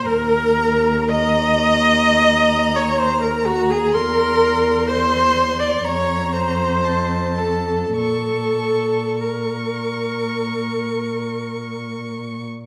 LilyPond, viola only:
\new Staff \with { instrumentName = "Viola" } { \time 4/4 \key bes \minor \tempo 4 = 58 bes'4 ees''4.~ ees''16 des''16 c''16 bes'16 ges'16 aes'16 | bes'4 c''8. d''16 des''8 c''4 a'8 | a'4 bes'2~ bes'8 r8 | }